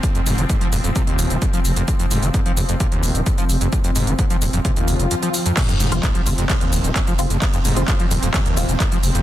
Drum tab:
CC |----------------|----------------|----------------|x---------------|
RD |----------------|----------------|----------------|x---x---x---x---|
HH |xxoxxxoxxxoxxxox|xxoxxxoxxxoxxxox|xxoxxxoxxxoxxxox|xxoxxxoxxxoxxxox|
SH |xxxxx-xxx-xxxxxx|xxxxx-xxx-xxxxxx|xxxxxxxxxxxxxxxx|xxxxx-xxx-xxxxxx|
CP |----------------|----------------|----------------|x---x---x---x---|
BD |o---o---o---o---|o---o---o---o---|o---o---o-------|o---o---o---o---|

CC |----------------|
RD |x---x---x---x---|
HH |xxoxxxoxxxoxxxox|
SH |xxxxx-xxx-xxxxxx|
CP |x---x---x---x---|
BD |o---o---o---o---|